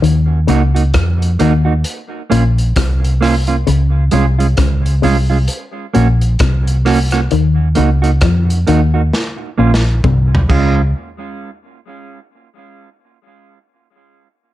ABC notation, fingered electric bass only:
X:1
M:4/4
L:1/8
Q:"Swing 16ths" 1/4=66
K:Ebdor
V:1 name="Fingered electric bass" clef=bass
E,, D,, F,, E,, z B,,, C,,2 | D,, C,, D,, C,, z B,,, C,,2 | E,, D,, F,, E,, z B,,, C,, D,, | z8 |]